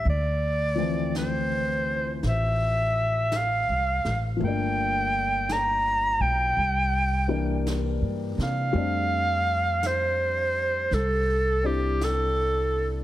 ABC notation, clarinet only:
X:1
M:4/4
L:1/16
Q:"Swing" 1/4=55
K:F
V:1 name="Clarinet"
d4 c4 e4 f3 z | g4 b2 g6 z2 f2- | f4 c4 A2 G2 A3 z |]